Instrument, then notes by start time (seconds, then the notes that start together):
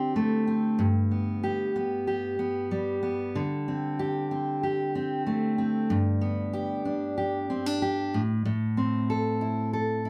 steel-string acoustic guitar
Already playing: D3 G3 C4 G4
0.16 A3
0.47 C4
0.79 G2
1.11 B3
1.43 G4
1.76 B3
2.07 G4
2.39 B3
2.71 G3
3.03 B3
3.35 D3
3.68 C4
3.99 G4
4.31 C4
4.63 G4
4.95 C4
5.27 A3
5.58 C4
5.90 G2
6.21 B3
6.53 G4
6.85 D4
7.18 G4
7.50 C4
7.66 D4
7.82 G4
8.14 A2
8.45 A2
8.77 C4
9.10 A4
9.41 E4
9.73 A4
10.05 E4